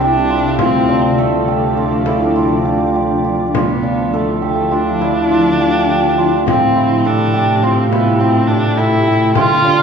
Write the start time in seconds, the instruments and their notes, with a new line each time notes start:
Already playing: cello C2, ambient pad C3 G3 E4, hammered dulcimer D4 E4 A4
0.01 viola D4, hammered dulcimer G4
0.30 hammered dulcimer F4, frame drum
0.59 cello D2, viola C4, hammered dulcimer F4, frame drum
0.63 ambient pad F3 D4
0.88 hammered dulcimer D4, frame drum
1.18 viola A3, hammered dulcimer A4, frame drum
1.47 hammered dulcimer G4, frame drum
1.77 hammered dulcimer F4
2.06 hammered dulcimer E4, frame drum
2.36 hammered dulcimer F4
2.65 hammered dulcimer G4, frame drum
2.96 hammered dulcimer G4, frame drum
3.24 hammered dulcimer F4
3.55 cello D2, ambient pad D3 F3 E4, viola B3, hammered dulcimer F4, frame drum
3.83 hammered dulcimer D4
4.13 viola A3, hammered dulcimer A4
4.42 viola A3, hammered dulcimer G4
4.72 viola D4, hammered dulcimer F4
5.01 hammered dulcimer E4, frame drum
5.31 hammered dulcimer F4
5.60 hammered dulcimer G4
5.89 hammered dulcimer G4
6.18 hammered dulcimer F4
6.46 cello A2, ambient pad C3 A3 G4, viola C4, hammered dulcimer G4, frame drum
6.76 hammered dulcimer E4
7.05 viola D4, hammered dulcimer A4
7.34 hammered dulcimer G4
7.63 viola C4, hammered dulcimer F4
7.91 viola B3, hammered dulcimer E4, frame drum
8.20 viola C4, hammered dulcimer G4
8.47 viola D4, hammered dulcimer A4
8.77 viola E4, hammered dulcimer A4
9.07 hammered dulcimer G4
9.35 cello D3, ambient pad D3 F3 E5, viola F4, hammered dulcimer F4, frame drum
9.65 hammered dulcimer D4